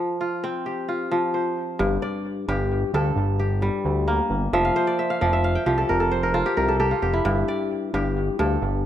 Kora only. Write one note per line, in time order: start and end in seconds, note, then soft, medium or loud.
0.00 1.10 F3 medium
0.00 0.61 A4 medium
0.21 0.88 F4 medium
0.44 2.24 C4 medium
0.66 2.07 G4 medium
0.88 2.40 F4 medium
1.11 1.85 F3 medium
1.34 2.53 C5 medium
1.79 2.47 G2 medium
2.02 3.13 D5 medium
2.49 2.93 G2 medium
2.49 3.39 G4 medium
2.94 4.58 G2 medium
2.94 4.14 A4 medium
3.39 4.81 G4 medium
3.62 4.58 G3 medium
4.08 5.84 A#3 medium
4.53 5.20 F3 medium
4.53 4.99 E5 medium
4.65 5.05 F5 medium
4.76 5.95 C5 medium
4.87 5.21 D5 medium
4.99 5.27 E5 medium
5.10 5.39 F5 medium
5.21 5.65 F3 medium
5.21 6.32 D5 medium
5.33 5.72 E5 medium
5.44 6.44 F5 medium
5.55 6.48 G5 medium
5.66 7.31 F3 medium
5.66 6.45 G4 medium
5.78 6.00 A4 medium
5.89 6.23 A#4 medium
6.00 6.29 A4 medium
6.11 7.30 C5 medium
6.23 6.57 A#4 medium
6.34 6.91 F4 medium
6.34 6.63 A4 medium
6.46 6.79 G4 medium
6.57 6.86 A#4 medium
6.68 6.79 A4 medium
6.80 7.02 G4 medium
6.80 8.11 A4 medium
6.91 7.19 F4 medium
7.02 7.94 G4 medium
7.13 8.70 E4 medium
7.25 7.93 G2 medium
7.48 8.59 D5 medium
7.94 8.38 G2 medium
7.94 8.85 G4 medium
8.39 8.86 G2 medium
8.39 8.86 A4 medium